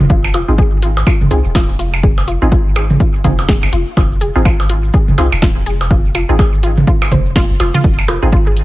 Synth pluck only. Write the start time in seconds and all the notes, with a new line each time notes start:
0.10 F4
0.34 F4
0.58 G#4
0.83 F4
1.07 F4
1.31 G#4
1.55 F4
1.79 F4
2.03 G#4
2.28 F4
2.52 F4
2.76 G#4
3.00 F4
3.24 F4
3.48 G#4
3.73 F4
3.97 F4
4.21 G#4
4.45 F4
4.70 F4
4.94 G#4
5.18 F4
5.42 F4
5.66 G#4
5.91 F4
6.15 F4
6.39 G#4
6.63 F4
6.87 F4
7.12 C5
7.36 F4
7.60 F4
7.74 F4
8.08 F4
8.32 F4
8.47 G#4